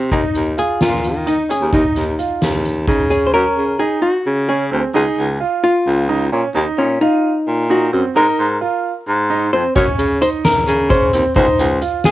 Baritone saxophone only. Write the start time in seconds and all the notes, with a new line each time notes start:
0.12 D#2
0.35 D#2
0.81 A#2
1.15 D#3
1.61 D#2
1.73 D#2
1.96 D#2
2.42 D#2
2.88 C#3
3.34 F#2
3.57 C#3
4.26 C#3
4.72 D2
4.95 C#2
5.18 C#2
5.86 C#2
6.32 A#2
6.55 D#2
6.78 A#2
7.47 A#2
7.93 F#2
8.16 G#2
8.39 G#2
9.08 G#2
9.53 F2
9.76 F#2
9.99 C#3
10.68 C#3
11.14 D#2
11.36 C#2
11.59 C#2